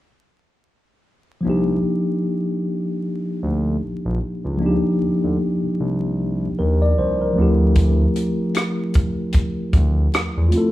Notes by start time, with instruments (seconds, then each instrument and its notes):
1.41 tine electric piano F3 A#3
1.45 analog synth bass C2, tine electric piano D4 D#4
1.49 tine electric piano G4
3.43 analog synth bass D2
3.82 analog synth bass A#1
4.05 analog synth bass A#1
4.44 analog synth bass C#2
4.57 tine electric piano F3 A#3
4.62 tine electric piano D4 D#4
4.66 tine electric piano G4
5.01 analog synth bass D2
5.24 analog synth bass D2
5.63 analog synth bass C2
5.80 analog synth bass C2
6.59 analog synth bass D#2, tine electric piano A#4
6.82 tine electric piano D5
6.98 analog synth bass C2, tine electric piano C5
7.21 tine electric piano A#4
7.33 tine electric piano F3 A3
7.37 analog synth bass D2, tine electric piano C4 E4
7.42 tine electric piano G4
7.75 kick, closed hi-hat
8.16 closed hi-hat
8.54 cross-stick, closed hi-hat
8.94 kick, closed hi-hat
9.32 kick, closed hi-hat
9.73 analog synth bass D2, kick, closed hi-hat
10.14 analog synth bass E2, cross-stick, closed hi-hat
10.37 analog synth bass E2
10.49 tine electric piano A3 F4, closed hi-hat
10.53 tine electric piano C4 E4
10.58 tine electric piano A4